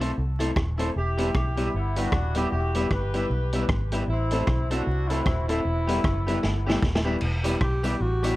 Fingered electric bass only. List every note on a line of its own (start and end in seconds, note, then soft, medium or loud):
0.00 0.11 B1 medium
0.18 0.51 C2 medium
0.56 0.90 D#1 medium
0.96 1.29 E1 medium
1.35 1.68 B1 medium
1.74 2.07 G1 medium
2.12 2.46 D#1 medium
2.52 2.85 E1 medium
2.90 3.24 G1 medium
3.30 3.64 B1 medium
3.69 4.03 G#1 medium
4.08 4.42 A1 loud
4.47 4.81 B1 medium
4.87 5.20 C2 medium
5.26 5.60 D#1 medium
5.65 5.99 E1 medium
6.05 6.38 F#1 medium
6.43 6.77 G1 medium
6.82 7.16 D#1 medium
7.22 7.55 E1 loud
7.61 7.94 B1 medium
8.00 8.34 A1 medium